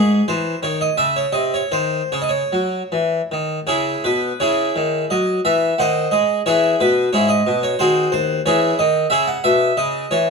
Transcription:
0.00 0.20 G#2 medium
0.00 0.24 G#4 medium
0.28 0.53 E3 medium
0.28 0.58 C5 medium
0.63 0.88 D#3 medium
0.63 0.81 C#5 medium
0.81 0.99 D#5 medium
0.97 1.24 C#3 medium
0.97 1.16 E5 medium
1.16 1.34 C#5 medium
1.32 1.60 C3 medium
1.32 1.52 D#5 medium
1.54 1.73 C#5 medium
1.72 2.00 D#3 soft
1.72 2.12 C5 medium
2.12 2.41 C#3 medium
2.12 2.20 C#5 medium
2.22 2.29 D#5 medium
2.29 3.66 C#5 medium
2.53 2.81 F#3 soft
2.92 3.20 E3 soft
3.32 3.58 D#3 medium
3.67 3.94 C#3 soft
3.67 4.03 E4 medium
3.67 4.03 G#4 soft
3.67 4.04 C#5 medium
4.04 4.31 B2 soft
4.04 4.41 B4 medium
4.40 4.69 C#3 medium
4.40 5.07 E4 medium
4.40 5.07 G#4 medium
4.40 5.00 C#5 medium
4.76 5.04 D#3 medium
5.10 5.38 F#3 medium
5.10 5.39 D#5 medium
5.45 5.72 E3 medium
5.45 5.79 E5 medium
5.78 6.06 D#3 medium
5.78 6.11 C5 medium
5.78 6.10 D#5 medium
5.78 6.12 F#5 medium
6.11 6.39 G#3 soft
6.11 6.41 D#5 medium
6.46 6.74 E3 medium
6.46 6.78 E4 medium
6.46 6.78 G#4 medium
6.46 6.80 C#5 medium
6.80 7.07 B2 medium
6.80 7.09 B4 medium
7.13 7.40 G#2 soft
7.13 7.29 E4 medium
7.13 7.30 G#4 medium
7.13 7.30 C#5 medium
7.29 7.63 D#5 medium
7.47 7.73 B2 medium
7.63 7.80 C#5 medium
7.79 8.06 D#3 medium
7.79 8.11 F#4 medium
7.79 8.11 G#4 medium
7.79 8.11 C5 medium
8.12 8.39 D#2 medium
8.12 8.40 C5 medium
8.46 8.72 E3 medium
8.46 8.77 E4 medium
8.46 8.77 G#4 medium
8.46 8.78 C#5 medium
8.79 9.05 D#3 medium
8.79 9.06 D#5 medium
9.10 9.37 C#3 medium
9.10 9.26 G#4 medium
9.10 9.26 C#5 medium
9.10 9.27 E5 medium
9.27 9.43 F#5 medium
9.44 9.70 B2 medium
9.44 9.77 E5 medium
9.77 10.04 C#3 medium
9.77 10.11 D#5 medium
10.11 10.30 E3 medium
10.11 10.30 C#5 medium

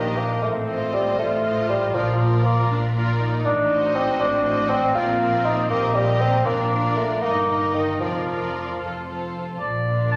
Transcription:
0.00 0.34 A#1 medium
0.00 0.34 A#2 medium
0.00 0.19 D#3 medium
0.00 0.42 D4 medium
0.00 0.42 G4 soft
0.00 0.42 A#4 soft
0.00 0.42 D#5 soft
0.18 0.45 A#3 medium
0.42 1.10 A1 medium
0.42 1.09 A2 medium
0.42 0.93 A3 medium
0.42 1.17 C4 medium
0.68 1.42 F4 medium
0.68 1.43 C5 soft
0.68 1.42 D#5 soft
0.94 1.18 G3 medium
1.19 1.86 A1 medium
1.19 1.86 A2 medium
1.19 1.69 A3 medium
1.19 2.67 F4 medium
1.44 1.94 F4 soft
1.44 1.94 C5 soft
1.44 1.94 D#5 soft
1.69 1.96 G3 medium
1.95 2.62 A#1 medium
1.95 2.66 A#2 medium
1.95 2.61 A#2 medium
1.95 2.45 F3 medium
1.95 2.19 F4 medium
1.95 2.19 A#4 soft
1.95 2.19 D5 soft
2.20 2.94 F4 medium
2.20 2.94 A#4 medium
2.20 2.94 D5 soft
2.45 2.70 A#3 medium
2.70 3.37 A#1 medium
2.70 3.36 A#2 medium
2.70 2.79 D4 medium
2.95 3.20 F4 medium
2.95 3.44 F4 soft
2.95 3.44 A#4 soft
2.95 3.44 D5 soft
3.21 4.18 D#4 medium
3.45 4.11 A1 medium
3.45 4.11 A2 medium
3.45 3.97 D4 medium
3.70 4.43 F#4 medium
3.70 4.43 C5 medium
3.70 4.43 D#5 medium
3.96 4.20 C4 medium
4.20 4.86 A1 medium
4.20 4.86 A2 medium
4.20 6.46 C4 medium
4.20 4.71 D4 medium
4.45 4.94 F#4 medium
4.45 4.94 C5 medium
4.45 4.94 D#5 medium
4.70 4.94 C4 medium
4.95 5.61 A#1 medium
4.95 5.62 A#2 medium
4.95 5.47 F4 medium
4.95 5.19 F4 medium
4.95 5.19 A#4 soft
4.95 5.18 D5 medium
5.20 5.69 F4 medium
5.20 5.69 A#4 medium
5.20 5.69 D5 medium
5.45 5.70 D#4 medium
5.70 6.37 A#1 medium
5.70 6.37 A#2 medium
5.70 5.97 A#3 medium
5.70 5.95 G4 soft
5.70 5.95 A#4 medium
5.70 5.94 D#5 medium
5.95 6.23 G3 medium
5.95 6.45 G4 medium
5.95 6.45 A#4 soft
5.95 6.45 D#5 medium
6.21 6.47 C4 medium
6.45 7.13 A#1 medium
6.45 7.13 A#2 medium
6.45 7.18 A#2 medium
6.45 6.96 A#3 medium
6.45 7.22 D4 medium
6.45 6.70 F4 soft
6.45 6.70 A#4 soft
6.45 6.70 D5 soft
6.71 7.21 F4 soft
6.71 7.21 A#4 medium
6.71 7.21 D5 medium
6.97 7.24 A3 medium
7.22 7.92 G1 soft
7.22 7.92 G2 medium
7.22 7.74 A#3 medium
7.22 8.00 D#4 medium
7.22 7.48 D#4 soft
7.22 7.48 A#4 soft
7.22 7.48 D#5 soft
7.49 8.01 D#4 soft
7.49 8.01 A#4 soft
7.49 8.01 D#5 soft
7.74 8.00 D#3 medium
8.01 8.72 F1 soft
8.01 8.72 F2 soft
8.01 8.80 F3 medium
8.01 9.21 F4 medium
8.01 8.28 F4 soft
8.01 8.28 A#4 soft
8.01 8.27 D5 soft
8.28 8.80 F4 soft
8.28 8.81 A#4 soft
8.28 8.80 D5 soft
8.81 9.52 F1 soft
8.81 9.52 F2 soft
8.81 9.06 F4 soft
8.81 9.06 A4 soft
8.81 9.05 C5 soft
9.07 9.60 F4 soft
9.07 9.60 A4 soft
9.07 9.60 C5 soft
9.60 10.16 A#1 soft
9.60 10.16 A#2 soft
9.60 10.09 D5 medium
9.87 10.16 D4 soft
9.87 10.16 F4 soft
9.87 10.16 A#4 soft
10.12 10.16 A5 medium

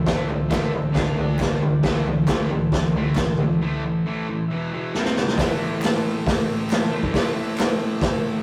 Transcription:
0.00 0.91 A4 medium
0.00 0.92 C5 medium
0.00 0.93 E5 medium
0.06 0.28 A2 medium
0.06 0.28 E3 medium
0.06 0.29 A3 loud
0.06 kick loud
0.06 snare loud
0.06 floor tom medium
0.29 0.48 A2 medium
0.29 0.48 E3 medium
0.29 floor tom medium
0.49 0.70 A2 loud
0.49 0.70 E3 medium
0.49 0.72 A3 loud
0.49 kick loud
0.49 snare loud
0.49 clap loud
0.49 floor tom medium
0.71 0.92 A2 medium
0.71 0.92 E3 medium
0.71 floor tom medium
0.92 1.14 D3 medium
0.92 1.15 A3 medium
0.92 1.16 D4 medium
0.92 1.37 D4 medium
0.92 1.40 A4 medium
0.92 kick loud
0.92 snare loud
0.92 floor tom medium
0.97 1.38 D5 medium
1.15 1.37 D3 medium
1.15 1.38 A3 medium
1.15 1.38 D4 medium
1.15 floor tom medium
1.37 1.60 G2 medium
1.37 1.60 D3 medium
1.37 1.60 G3 medium
1.37 1.83 D4 medium
1.37 1.84 G4 medium
1.37 1.84 D5 medium
1.37 kick loud
1.37 clap loud
1.37 floor tom medium
1.42 snare medium
1.62 1.82 G2 medium
1.62 1.82 D3 medium
1.62 floor tom medium
1.81 2.04 A2 medium
1.81 2.05 E3 medium
1.81 2.05 A3 loud
1.81 4.44 E4 medium
1.81 4.44 A4 medium
1.81 4.45 C5 medium
1.81 kick loud
1.81 snare loud
1.81 floor tom medium
2.06 2.26 A2 medium
2.06 2.26 E3 medium
2.06 floor tom medium
2.27 2.49 A2 medium
2.27 2.49 E3 loud
2.27 2.50 A3 medium
2.27 kick loud
2.27 snare loud
2.27 clap loud
2.27 floor tom medium
2.50 2.71 A2 medium
2.50 2.71 E3 medium
2.50 floor tom medium
2.72 2.93 A2 medium
2.72 2.93 E3 medium
2.72 kick loud
2.72 snare loud
2.72 floor tom medium
2.93 3.16 A2 medium
2.93 3.16 E3 medium
2.93 floor tom medium
2.97 3.17 A3 medium
3.15 3.37 A2 medium
3.15 3.37 E3 medium
3.15 kick medium
3.15 snare loud
3.15 clap medium
3.15 floor tom medium
3.37 3.59 A2 medium
3.37 3.59 E3 medium
3.37 floor tom medium
3.61 3.82 A2 medium
3.61 3.82 E3 medium
3.61 3.83 A3 loud
3.84 4.04 A2 medium
3.84 4.04 E3 medium
4.06 4.26 A2 medium
4.06 4.27 E3 loud
4.06 4.27 A3 loud
4.30 4.49 A2 medium
4.30 4.48 E3 medium
4.47 4.71 E2 medium
4.47 4.71 B2 medium
4.47 4.93 E4 medium
4.47 4.93 B4 medium
4.47 4.93 E5 medium
4.52 4.71 E3 loud
4.72 4.93 E2 medium
4.72 4.93 B2 medium
4.72 4.94 E3 medium
4.93 5.15 C3 medium
4.93 5.16 G3 medium
4.93 5.37 G4 medium
4.93 5.38 C5 medium
4.93 5.39 G5 medium
4.93 snare soft
4.97 5.16 C4 medium
5.05 snare medium
5.16 5.37 C3 medium
5.16 5.37 G3 medium
5.16 snare medium
5.28 snare medium
5.37 6.90 A2 medium
5.37 6.94 E3 loud
5.37 8.43 A4 medium
5.37 8.43 C5 medium
5.37 8.43 E5 medium
5.37 kick loud
5.37 snare loud
5.37 open hi-hat medium
5.42 6.91 A3 loud
5.82 snare loud
5.82 clap loud
5.82 open hi-hat medium
6.27 kick loud
6.27 snare loud
6.27 open hi-hat medium
6.70 snare loud
6.70 clap loud
6.70 open hi-hat medium
6.92 7.16 E3 medium
6.92 7.12 A3 medium
6.97 7.12 A2 medium
7.03 kick medium
7.13 8.43 A2 loud
7.13 8.43 E3 loud
7.13 kick loud
7.13 snare loud
7.13 open hi-hat medium
7.18 8.43 A3 loud
7.58 snare loud
7.58 clap loud
7.58 open hi-hat medium
8.01 kick loud
8.01 snare loud
8.01 open hi-hat medium

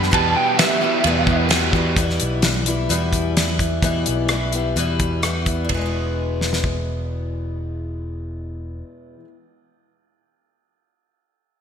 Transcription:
0.00 0.11 F#2 loud
0.00 0.11 G3 medium
0.00 0.12 B3 medium
0.00 0.12 D4 medium
0.00 0.14 G4 medium
0.00 0.14 A4 medium
0.00 0.12 B5 loud
0.00 snare soft
0.11 0.58 E2 medium
0.11 0.34 E2 loud
0.11 0.58 B2 medium
0.11 0.58 E3 medium
0.11 0.58 G3 medium
0.11 0.59 B3 medium
0.11 0.60 G4 loud
0.11 0.36 A5 loud
0.11 kick loud
0.11 ride bell medium
0.36 0.58 G5 medium
0.58 0.82 E3 medium
0.58 0.82 G3 medium
0.58 0.81 B3 medium
0.58 0.80 F#4 medium
0.58 0.80 G4 medium
0.58 1.48 E5 loud
0.58 snare loud
0.58 ride bell medium
0.81 1.06 E3 medium
0.81 1.05 G3 soft
0.81 1.05 B3 soft
0.81 1.05 F#4 medium
0.81 1.04 G4 medium
1.04 1.70 E2 medium
1.04 1.51 E2 medium
1.04 1.52 B2 medium
1.04 1.48 E3 medium
1.04 1.49 G3 medium
1.04 1.50 B3 medium
1.04 1.23 G4 loud
1.04 ride bell medium
1.24 1.49 E3 medium
1.24 1.50 G3 medium
1.24 1.51 B3 medium
1.24 1.51 G4 medium
1.24 kick medium
1.49 1.73 E3 medium
1.49 1.74 G3 medium
1.49 1.74 B3 medium
1.49 1.73 F#4 medium
1.49 1.97 G4 medium
1.49 snare loud
1.49 ride bell medium
1.73 1.95 E2 loud
1.73 1.97 E3 soft
1.73 1.96 G3 soft
1.73 1.97 B3 medium
1.73 1.98 F#4 medium
1.73 kick medium
1.96 2.18 E2 loud
1.96 2.43 E2 medium
1.96 2.44 B2 medium
1.96 2.44 E3 medium
1.96 2.44 G3 medium
1.96 2.46 B3 medium
1.96 2.47 E4 medium
1.96 kick loud
1.96 closed hi-hat medium
2.10 snare soft
2.20 2.87 B1 medium
2.20 closed hi-hat medium
2.42 2.67 E3 medium
2.42 2.68 G3 medium
2.42 snare loud
2.42 closed hi-hat medium
2.47 2.67 B3 medium
2.47 2.67 E4 medium
2.66 2.89 E3 soft
2.66 2.89 G3 soft
2.66 2.89 B3 soft
2.66 2.90 E4 medium
2.66 closed hi-hat medium
2.89 3.36 E2 medium
2.89 3.79 E2 loud
2.89 3.36 B2 medium
2.89 3.36 E3 medium
2.89 3.36 G3 medium
2.89 3.37 B3 medium
2.89 3.39 E4 medium
2.89 closed hi-hat medium
3.13 kick medium
3.13 closed hi-hat medium
3.37 3.83 E3 medium
3.37 3.83 G3 medium
3.37 3.84 B3 medium
3.37 3.84 E4 medium
3.37 snare loud
3.37 closed hi-hat medium
3.59 kick medium
3.59 closed hi-hat medium
3.82 4.04 E2 loud
3.82 4.30 E2 medium
3.82 4.30 B2 medium
3.82 4.29 E3 medium
3.82 4.30 G3 medium
3.82 4.30 B3 medium
3.82 4.30 E4 medium
3.82 kick loud
3.82 closed hi-hat medium
4.06 4.73 B1 medium
4.06 closed hi-hat medium
4.29 4.53 E3 medium
4.29 4.54 G3 medium
4.29 cross-stick loud
4.29 closed hi-hat medium
4.33 4.54 B3 medium
4.33 4.53 E4 medium
4.52 4.76 E3 soft
4.52 4.76 G3 soft
4.52 4.76 B3 medium
4.52 4.77 E4 soft
4.52 closed hi-hat medium
4.76 5.66 E2 loud
4.76 5.23 E2 medium
4.76 5.23 B2 medium
4.76 5.21 E3 medium
4.76 5.23 G3 medium
4.76 5.23 B3 medium
4.76 5.24 E4 medium
4.76 closed hi-hat medium
5.00 kick medium
5.00 closed hi-hat medium
5.22 5.70 E3 medium
5.22 5.71 G3 medium
5.22 5.71 B3 medium
5.22 5.71 E4 medium
5.22 cross-stick loud
5.22 closed hi-hat medium
5.46 kick medium
5.46 closed hi-hat medium
5.65 9.15 E2 medium
5.69 8.81 E1 medium
5.69 9.20 B2 medium
5.69 kick medium
5.69 ride medium
5.74 9.24 E3 medium
5.74 9.27 G#3 medium
5.81 9.31 B3 medium
5.86 9.36 E4 medium
6.41 snare medium
6.53 snare medium
6.64 kick medium

